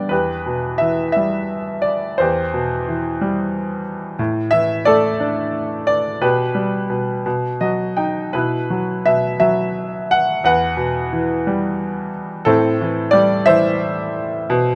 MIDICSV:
0, 0, Header, 1, 2, 480
1, 0, Start_track
1, 0, Key_signature, 1, "minor"
1, 0, Tempo, 697674
1, 77, Time_signature, 6, 3, 24, 8
1, 1516, Tempo, 662983
1, 2956, Tempo, 677966
1, 4876, Tempo, 713436
1, 6796, Tempo, 677966
1, 10330, End_track
2, 0, Start_track
2, 0, Title_t, "Grand piano"
2, 0, Program_c, 0, 0
2, 0, Control_c, 0, 64, 127
2, 0, Note_on_c, 0, 55, 33
2, 0, Note_on_c, 0, 59, 29
2, 0, Note_on_c, 0, 62, 36
2, 0, Note_on_c, 0, 74, 49
2, 0, Note_on_c, 0, 79, 53
2, 63, Note_on_c, 0, 71, 58
2, 71, Note_off_c, 0, 55, 0
2, 74, Note_off_c, 0, 59, 0
2, 74, Note_off_c, 0, 62, 0
2, 76, Note_on_c, 0, 40, 48
2, 79, Note_on_c, 0, 67, 45
2, 86, Control_c, 0, 64, 0
2, 87, Note_off_c, 0, 74, 0
2, 90, Note_off_c, 0, 79, 0
2, 195, Control_c, 0, 64, 127
2, 317, Note_on_c, 0, 47, 40
2, 537, Note_on_c, 0, 76, 71
2, 560, Note_on_c, 0, 52, 40
2, 568, Note_off_c, 0, 71, 0
2, 762, Note_off_c, 0, 76, 0
2, 773, Note_on_c, 0, 76, 67
2, 776, Note_off_c, 0, 67, 0
2, 801, Note_on_c, 0, 55, 43
2, 1238, Note_off_c, 0, 76, 0
2, 1250, Note_on_c, 0, 74, 65
2, 1252, Note_off_c, 0, 47, 0
2, 1482, Note_off_c, 0, 74, 0
2, 1487, Note_off_c, 0, 40, 0
2, 1487, Note_off_c, 0, 52, 0
2, 1492, Note_off_c, 0, 55, 0
2, 1499, Note_on_c, 0, 72, 62
2, 1512, Note_on_c, 0, 40, 57
2, 1523, Note_on_c, 0, 67, 43
2, 1525, Control_c, 0, 64, 0
2, 1663, Control_c, 0, 64, 127
2, 1757, Note_on_c, 0, 47, 43
2, 2009, Note_on_c, 0, 52, 45
2, 2247, Note_on_c, 0, 55, 48
2, 2676, Note_off_c, 0, 72, 0
2, 2684, Note_off_c, 0, 47, 0
2, 2689, Note_off_c, 0, 67, 0
2, 2925, Note_off_c, 0, 40, 0
2, 2931, Note_off_c, 0, 52, 0
2, 2939, Note_off_c, 0, 55, 0
2, 2955, Note_on_c, 0, 45, 61
2, 2964, Control_c, 0, 64, 0
2, 3086, Control_c, 0, 64, 127
2, 3178, Note_on_c, 0, 76, 93
2, 3195, Note_on_c, 0, 52, 45
2, 3407, Note_off_c, 0, 76, 0
2, 3424, Note_on_c, 0, 74, 87
2, 3431, Note_on_c, 0, 69, 67
2, 3439, Note_on_c, 0, 57, 54
2, 3669, Note_on_c, 0, 62, 55
2, 4118, Note_off_c, 0, 74, 0
2, 4121, Note_off_c, 0, 69, 0
2, 4122, Note_off_c, 0, 52, 0
2, 4143, Note_on_c, 0, 74, 81
2, 4361, Note_off_c, 0, 45, 0
2, 4365, Note_off_c, 0, 57, 0
2, 4367, Note_off_c, 0, 62, 0
2, 4387, Note_on_c, 0, 47, 61
2, 4388, Note_on_c, 0, 71, 65
2, 4390, Note_on_c, 0, 67, 52
2, 4393, Note_off_c, 0, 74, 0
2, 4399, Control_c, 0, 64, 0
2, 4524, Control_c, 0, 64, 127
2, 4623, Note_on_c, 0, 55, 45
2, 4860, Note_off_c, 0, 47, 0
2, 4870, Note_on_c, 0, 47, 42
2, 5082, Note_off_c, 0, 71, 0
2, 5083, Note_off_c, 0, 67, 0
2, 5092, Note_off_c, 0, 55, 0
2, 5100, Note_off_c, 0, 47, 0
2, 5114, Note_on_c, 0, 47, 55
2, 5118, Control_c, 0, 64, 0
2, 5228, Control_c, 0, 64, 127
2, 5348, Note_on_c, 0, 75, 56
2, 5350, Note_on_c, 0, 54, 40
2, 5573, Note_off_c, 0, 75, 0
2, 5590, Note_on_c, 0, 79, 47
2, 5594, Note_on_c, 0, 63, 42
2, 5817, Note_off_c, 0, 47, 0
2, 5819, Note_off_c, 0, 79, 0
2, 5823, Note_off_c, 0, 54, 0
2, 5831, Note_off_c, 0, 63, 0
2, 5836, Note_on_c, 0, 71, 61
2, 5841, Note_on_c, 0, 64, 42
2, 5845, Note_on_c, 0, 47, 53
2, 5846, Control_c, 0, 64, 0
2, 5978, Control_c, 0, 64, 127
2, 6087, Note_on_c, 0, 54, 41
2, 6313, Note_off_c, 0, 47, 0
2, 6323, Note_on_c, 0, 47, 42
2, 6323, Note_on_c, 0, 76, 76
2, 6339, Note_off_c, 0, 71, 0
2, 6536, Note_off_c, 0, 64, 0
2, 6543, Note_off_c, 0, 76, 0
2, 6546, Note_off_c, 0, 54, 0
2, 6553, Note_on_c, 0, 76, 75
2, 6557, Note_on_c, 0, 54, 47
2, 7046, Note_on_c, 0, 78, 82
2, 7049, Note_off_c, 0, 76, 0
2, 7252, Note_off_c, 0, 47, 0
2, 7256, Note_off_c, 0, 54, 0
2, 7279, Note_off_c, 0, 78, 0
2, 7279, Note_on_c, 0, 40, 58
2, 7284, Note_on_c, 0, 71, 57
2, 7290, Control_c, 0, 64, 0
2, 7290, Note_on_c, 0, 78, 80
2, 7403, Control_c, 0, 64, 127
2, 7512, Note_on_c, 0, 47, 46
2, 7766, Note_on_c, 0, 52, 49
2, 8007, Note_on_c, 0, 55, 52
2, 8451, Note_off_c, 0, 47, 0
2, 8458, Note_off_c, 0, 71, 0
2, 8460, Note_off_c, 0, 78, 0
2, 8692, Note_off_c, 0, 40, 0
2, 8695, Note_off_c, 0, 52, 0
2, 8701, Note_off_c, 0, 55, 0
2, 8702, Note_on_c, 0, 69, 79
2, 8711, Note_on_c, 0, 45, 68
2, 8714, Note_on_c, 0, 60, 60
2, 8730, Control_c, 0, 64, 0
2, 8876, Control_c, 0, 64, 127
2, 8958, Note_on_c, 0, 52, 54
2, 9169, Note_on_c, 0, 74, 92
2, 9184, Note_on_c, 0, 55, 58
2, 9200, Note_off_c, 0, 69, 0
2, 9401, Note_off_c, 0, 60, 0
2, 9402, Note_off_c, 0, 74, 0
2, 9414, Note_on_c, 0, 76, 98
2, 9420, Note_off_c, 0, 52, 0
2, 9421, Note_on_c, 0, 72, 69
2, 9430, Note_on_c, 0, 52, 57
2, 10120, Note_off_c, 0, 45, 0
2, 10120, Note_off_c, 0, 55, 0
2, 10131, Note_off_c, 0, 52, 0
2, 10151, Note_on_c, 0, 47, 76
2, 10162, Control_c, 0, 64, 0
2, 10272, Control_c, 0, 64, 127
2, 10330, Note_off_c, 0, 47, 0
2, 10330, Note_off_c, 0, 72, 0
2, 10330, Note_off_c, 0, 76, 0
2, 10330, End_track
0, 0, End_of_file